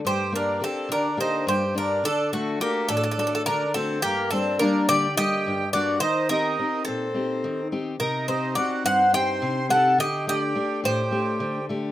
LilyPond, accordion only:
\new Staff \with { instrumentName = "Accordion" } { \time 7/8 \tempo 4 = 106 g'8 d'8 c'8 d'8 ees'8 g'8 d'8 | d'8 a8 bes8 d'4 d'8 c'8 | bes8 c'8 d'8 g'8 g'4 fis'8 | ees'8 ees'4 c'4. r8 |
ees'8 ees'8 fis'8 c''8 c''4 a'8 | g'8 g'4 g'4. r8 | }